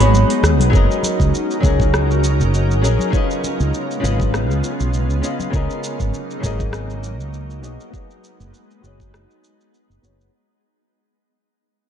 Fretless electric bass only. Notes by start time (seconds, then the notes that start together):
0.00 G#1
0.43 D#2
0.60 B1
0.73 F#1
1.20 C#2
1.63 C#2
2.39 F#1
2.83 A#1
3.60 C#2
4.03 G#1
4.49 C#2
4.80 B1
5.10 C#2
5.53 C#2
6.00 G#1
6.43 G#1
7.20 C#2
7.63 B1
8.40 F#1
8.83 F#1
9.89 F#1
10.03 F#1